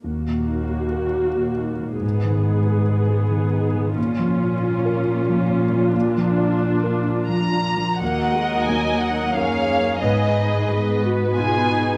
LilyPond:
<<
  \new Staff \with { instrumentName = "Violin section" } { \time 3/4 \key ees \minor \tempo 4 = 90 r2. | r2. | r2. | r2 bes''4 |
ges''4 aes''8 ges''8 f''4 | ees''4. r8 aes''4 | }
  \new Staff \with { instrumentName = "Violin section" } { \time 3/4 \key ees \minor << { r2. | r2. | r2. | r2. |
ees''2 des''4 | ces''2 aes'4 | } \\ { r2. | r2. | r2. | r2. |
bes'2 aes'4 | aes'4 ces''2 | } >> }
  \new Staff \with { instrumentName = "Grand piano" } { \time 3/4 \key ees \minor \tuplet 3/2 { ees,8 bes,8 ees'8 ges'8 bes'8 ges'8 bes,8 ees'8 bes,8 } | \tuplet 3/2 { aes,8 ees8 ees'8 aes'8 ces''8 aes'8 ees8 ees'8 ees8 } | \tuplet 3/2 { bes,8 f8 des'8 f'8 bes'8 f'8 f8 des'8 f8 } | \tuplet 3/2 { bes,8 f8 d'8 f'8 bes'8 f'8 f8 d'8 f8 } |
ees,4 bes4 <ees' bes'>4 | aes,4 aes4 <ees' ces''>4 | }
  \new Staff \with { instrumentName = "Viola section" } { \time 3/4 \key ees \minor << { ges'2. | aes'2. | f'2.~ | f'2~ f'8 r8 |
ges'4 ees'4 des'4 | ces'8 ees'8 aes'8 ges'8 f'8 ees'8 | } \\ { bes2. | ces'2. | des'2. | d'2~ d'8 r8 |
bes8 aes8 ges4 bes8 bes8 | ces'4 ces'2 | } >> }
  \new Staff \with { instrumentName = "Cello section" } { \clef bass \time 3/4 \key ees \minor ees,2. | aes,2. | bes,2.~ | bes,2~ bes,8 r8 |
ees,2 ges,4 | aes,2 ces4 | }
>>